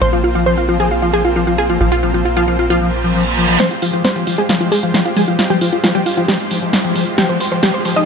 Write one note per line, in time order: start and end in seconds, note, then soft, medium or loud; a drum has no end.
0.01 1.78 A#1 medium
0.01 0.10 F3 medium
0.01 0.17 A#3 medium
0.01 0.17 C4 medium
0.01 0.17 F4 medium
0.01 0.10 C5 loud
0.01 0.17 C5 medium
0.01 0.10 C6 loud
0.13 0.22 F3 medium
0.13 0.21 F4 medium
0.13 0.21 F5 medium
0.24 0.40 A#3 medium
0.24 0.40 C4 medium
0.24 0.32 F4 medium
0.24 0.40 F4 medium
0.24 0.40 C5 medium
0.24 0.32 F5 medium
0.35 0.44 F3 medium
0.35 0.43 F4 medium
0.35 0.43 F5 medium
0.46 0.55 F3 medium
0.46 0.62 A#3 medium
0.46 0.62 C4 medium
0.46 0.62 F4 medium
0.46 0.54 C5 medium
0.46 0.62 C5 medium
0.46 0.54 C6 medium
0.57 0.66 F4 medium
0.57 0.66 F5 medium
0.69 0.78 F3 medium
0.69 0.85 A#3 medium
0.69 0.85 C4 medium
0.69 0.77 F4 medium
0.69 0.85 F4 medium
0.69 0.85 C5 medium
0.69 0.77 F5 medium
0.80 0.89 F3 medium
0.80 0.88 G#4 medium
0.80 0.88 G#5 medium
0.91 0.99 A#3 medium
0.91 0.99 C4 medium
0.91 0.99 F4 medium
0.91 0.99 C5 medium
0.91 0.99 F5 medium
1.02 1.11 F3 medium
1.02 1.18 A#3 medium
1.02 1.18 C4 medium
1.02 1.10 F4 medium
1.02 1.18 F4 medium
1.02 1.18 C5 medium
1.02 1.10 F5 medium
1.13 1.22 F3 medium
1.13 1.22 G#4 medium
1.13 1.22 G#5 medium
1.25 1.41 A#3 medium
1.25 1.41 C4 medium
1.25 1.33 F4 medium
1.25 1.41 F4 medium
1.25 1.41 C5 medium
1.25 1.33 F5 medium
1.36 1.45 F3 medium
1.36 1.44 F4 medium
1.36 1.44 F5 medium
1.47 1.56 F3 medium
1.47 1.63 A#3 medium
1.47 1.63 C4 medium
1.47 1.63 F4 medium
1.47 1.55 F4 medium
1.47 1.63 C5 medium
1.47 1.55 F5 medium
1.58 1.66 G#4 medium
1.58 1.66 G#5 medium
1.69 1.78 F3 medium
1.69 1.77 A#3 medium
1.69 1.77 C4 medium
1.69 1.78 F4 medium
1.69 1.77 F4 medium
1.69 1.77 C5 medium
1.69 1.78 F5 medium
1.81 3.58 A#1 medium
1.81 1.90 F3 medium
1.81 1.96 A#3 medium
1.81 1.96 C4 medium
1.81 1.89 F4 medium
1.81 1.96 F4 medium
1.81 1.96 C5 medium
1.81 1.89 F5 medium
1.92 2.00 F4 medium
1.92 2.00 F5 medium
2.03 2.12 F3 medium
2.03 2.19 A#3 medium
2.03 2.19 C4 medium
2.03 2.19 F4 medium
2.03 2.11 F4 medium
2.03 2.19 C5 medium
2.03 2.11 F5 medium
2.14 2.23 F3 medium
2.14 2.22 F4 medium
2.14 2.22 F5 medium
2.25 2.41 A#3 medium
2.25 2.41 C4 medium
2.25 2.33 F4 medium
2.25 2.41 F4 medium
2.25 2.41 C5 medium
2.25 2.34 F5 medium
2.37 2.45 F3 medium
2.37 2.45 F4 medium
2.37 2.45 F5 medium
2.48 2.57 F3 medium
2.48 2.64 A#3 medium
2.48 2.64 C4 medium
2.48 2.56 F4 medium
2.48 2.64 F4 medium
2.48 2.64 C5 medium
2.48 2.56 F5 medium
2.59 2.67 F4 medium
2.59 2.67 F5 medium
2.70 2.79 F3 medium
2.70 2.78 A#3 medium
2.70 2.78 C4 medium
2.70 3.51 F4 medium
2.70 2.78 F4 medium
2.70 2.78 C5 medium
2.70 3.51 F5 medium
2.70 reverse cymbal medium
2.81 2.90 F3 medium
2.81 2.97 A#3 medium
2.81 2.97 C4 medium
2.81 2.97 F4 medium
2.81 2.97 C5 medium
3.04 3.13 F3 medium
3.04 3.20 A#3 medium
3.04 3.20 C4 medium
3.04 3.20 F4 medium
3.04 3.20 C5 medium
3.15 3.24 F3 medium
3.26 3.42 A#3 medium
3.26 3.42 C4 medium
3.26 3.42 F4 medium
3.26 3.42 C5 medium
3.37 3.46 F3 medium
3.48 3.57 F3 medium
3.48 3.56 A#3 medium
3.48 3.56 C4 medium
3.48 3.56 F4 medium
3.48 3.56 C5 medium
3.60 3.75 G#3 medium
3.60 3.68 C4 medium
3.60 3.75 F4 medium
3.60 3.75 G4 medium
3.60 3.75 C5 medium
3.60 3.68 C5 loud
3.60 3.68 C6 loud
3.60 snare soft
3.60 closed hi-hat medium
3.60 riser medium
3.71 3.79 F4 medium
3.71 3.79 F5 medium
3.71 closed hi-hat soft
3.82 3.91 F3 medium
3.82 3.98 G#3 medium
3.82 3.98 F4 medium
3.82 3.90 F4 medium
3.82 3.98 G4 medium
3.82 3.98 C5 medium
3.82 3.90 F5 medium
3.82 open hi-hat loud
3.93 4.02 F3 medium
3.93 4.02 F4 medium
3.93 4.02 F5 medium
3.93 closed hi-hat soft
4.04 4.20 G#3 medium
4.04 4.13 C4 medium
4.04 4.20 F4 medium
4.04 4.20 G4 medium
4.04 4.20 C5 medium
4.04 4.13 C5 loud
4.04 4.13 C6 medium
4.04 snare soft
4.04 closed hi-hat medium
4.16 4.25 F3 medium
4.16 4.24 F4 medium
4.16 4.24 F5 medium
4.16 closed hi-hat soft
4.27 4.36 F3 medium
4.27 4.43 G#3 medium
4.27 4.43 F4 medium
4.27 4.35 F4 medium
4.27 4.43 G4 medium
4.27 4.43 C5 medium
4.27 4.35 F5 medium
4.27 open hi-hat loud
4.38 4.46 G#3 medium
4.38 4.46 G#4 medium
4.38 4.46 G#5 medium
4.38 closed hi-hat soft
4.49 4.58 F3 medium
4.49 4.57 G#3 medium
4.49 4.57 F4 medium
4.49 4.57 G4 medium
4.49 4.57 C5 medium
4.49 4.57 F5 medium
4.49 snare soft
4.49 closed hi-hat medium
4.60 4.69 F3 medium
4.60 4.76 G#3 medium
4.60 4.69 F4 medium
4.60 4.76 F4 medium
4.60 4.76 G4 medium
4.60 4.76 C5 medium
4.60 4.69 F5 medium
4.60 closed hi-hat soft
4.72 4.80 G#3 medium
4.72 4.80 G#4 loud
4.72 4.80 G#5 medium
4.72 open hi-hat loud
4.83 4.92 F3 medium
4.83 4.99 G#3 medium
4.83 4.99 F4 medium
4.83 4.91 F4 medium
4.83 4.99 G4 medium
4.83 4.99 C5 medium
4.83 4.91 F5 medium
4.83 closed hi-hat soft
4.94 5.03 F3 medium
4.94 5.02 F4 medium
4.94 5.02 F5 medium
4.94 snare soft
4.94 closed hi-hat medium
5.05 5.21 G#3 medium
5.05 5.21 F4 medium
5.05 5.13 F4 medium
5.05 5.21 G4 medium
5.05 5.21 C5 medium
5.05 5.13 F5 medium
5.05 closed hi-hat soft
5.17 5.25 F3 medium
5.17 5.25 G#3 medium
5.17 5.25 G#4 medium
5.17 5.25 G#5 medium
5.17 open hi-hat medium
5.28 5.37 F3 medium
5.28 5.36 G#3 medium
5.28 5.36 F4 medium
5.28 5.36 G4 medium
5.28 5.36 C5 medium
5.28 5.36 F5 medium
5.28 closed hi-hat soft
5.39 5.55 G#3 medium
5.39 5.54 F4 medium
5.39 5.47 F4 medium
5.39 5.55 G4 medium
5.39 5.55 C5 medium
5.39 5.47 F5 medium
5.39 snare soft
5.39 closed hi-hat medium
5.50 5.59 F3 medium
5.50 5.58 G3 medium
5.50 5.58 G4 medium
5.50 5.58 G5 medium
5.50 closed hi-hat soft
5.61 5.70 F3 medium
5.61 5.77 G#3 medium
5.61 5.77 F4 medium
5.61 5.70 F4 medium
5.61 5.77 G4 medium
5.61 5.77 C5 medium
5.61 5.69 F5 medium
5.61 open hi-hat loud
5.72 5.81 F4 medium
5.72 5.81 F5 medium
5.72 closed hi-hat soft
5.84 5.93 F3 medium
5.84 5.99 G#3 medium
5.84 5.99 F4 medium
5.84 5.92 F4 medium
5.84 5.99 G4 medium
5.84 5.99 C5 medium
5.84 5.92 F5 medium
5.84 snare soft
5.84 closed hi-hat medium
5.95 6.04 F3 medium
5.95 6.03 G3 medium
5.95 6.03 G4 medium
5.95 6.03 G5 medium
5.95 closed hi-hat soft
6.06 6.22 G#3 medium
6.06 6.22 F4 medium
6.06 6.14 F4 medium
6.06 6.22 G4 medium
6.06 6.22 C5 medium
6.06 6.14 F5 medium
6.06 open hi-hat loud
6.17 6.26 F3 medium
6.17 6.25 F4 medium
6.17 6.25 F5 medium
6.17 closed hi-hat soft
6.28 6.37 F3 medium
6.28 7.09 G3 medium
6.28 6.36 G#3 medium
6.28 6.36 F4 medium
6.28 6.36 G4 medium
6.28 7.09 G4 medium
6.28 6.36 C5 medium
6.28 7.09 G5 medium
6.28 snare medium
6.28 closed hi-hat medium
6.39 6.55 G#3 medium
6.39 6.55 F4 medium
6.39 6.55 G4 medium
6.39 6.55 C5 medium
6.39 closed hi-hat soft
6.51 6.60 F3 medium
6.51 open hi-hat loud
6.62 6.71 F3 medium
6.62 6.78 G#3 medium
6.62 6.78 F4 medium
6.62 6.78 G4 medium
6.62 6.78 C5 medium
6.62 closed hi-hat soft
6.73 snare medium
6.73 closed hi-hat medium
6.84 6.93 F3 medium
6.84 7.00 G#3 medium
6.84 7.00 F4 medium
6.84 7.00 G4 medium
6.84 7.00 C5 medium
6.84 closed hi-hat soft
6.96 7.04 F3 medium
6.96 open hi-hat loud
7.07 7.15 G#3 medium
7.07 7.15 F4 medium
7.07 7.15 G4 medium
7.07 7.15 C5 medium
7.07 closed hi-hat soft
7.18 7.27 F3 medium
7.18 7.34 G#3 medium
7.18 7.34 F4 medium
7.18 7.26 G4 medium
7.18 7.34 G4 medium
7.18 7.34 C5 medium
7.18 7.26 G5 loud
7.18 7.26 G6 loud
7.18 snare medium
7.18 closed hi-hat medium
7.29 7.38 F3 medium
7.29 7.37 C5 medium
7.29 7.37 C6 medium
7.29 closed hi-hat soft
7.40 7.56 G#3 medium
7.40 7.56 F4 medium
7.40 7.56 G4 medium
7.40 7.56 C5 medium
7.40 7.49 C5 medium
7.40 7.49 C6 medium
7.40 open hi-hat loud
7.52 7.60 F3 medium
7.52 7.60 C5 medium
7.52 7.60 C6 medium
7.52 closed hi-hat soft
7.63 7.72 F3 medium
7.63 7.78 G#3 medium
7.63 7.78 F4 medium
7.63 7.78 G4 medium
7.63 7.71 G4 medium
7.63 7.78 C5 medium
7.63 7.71 G5 loud
7.63 7.71 G6 medium
7.63 snare medium
7.63 closed hi-hat medium
7.74 7.82 C5 medium
7.74 7.82 C6 medium
7.74 closed hi-hat soft
7.85 7.94 F3 medium
7.85 8.01 G#3 medium
7.85 8.01 F4 medium
7.85 8.01 G4 medium
7.85 7.93 C5 medium
7.85 8.01 C5 medium
7.85 7.93 C6 medium
7.85 open hi-hat loud
7.96 8.05 F3 medium
7.96 8.04 D#4 medium
7.96 8.04 D#5 medium
7.96 8.05 D#6 medium
7.96 closed hi-hat soft